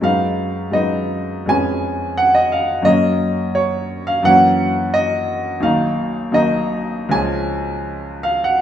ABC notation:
X:1
M:4/4
L:1/16
Q:1/4=86
K:F#
V:1 name="Grand piano"
e4 d4 g4 f d e2 | d4 c3 e f4 d4 | e4 d4 g6 e f |]
V:2 name="Grand piano" clef=bass
[F,,G,B,D]4 [F,,G,B,D]4 [E,,G,B,C]8 | [F,,F,A,C]8 [F,,=E,A,C]8 | [B,,,D,A,D]4 [B,,,D,A,D]4 [C,,E,G,C]8 |]